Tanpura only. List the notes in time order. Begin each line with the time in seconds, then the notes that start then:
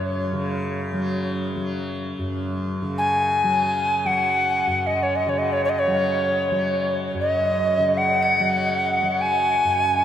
Already playing: F#2 C#3 F#3
0.32 C#3
0.93 F#3
1.56 F#3
2.19 F#2
2.82 C#3
3.44 F#3
4.05 F#3
4.67 F#2
5.26 C#3
5.88 F#3
6.51 F#3
7.14 F#2
7.78 C#3
8.40 F#3
9.02 F#3
9.65 F#2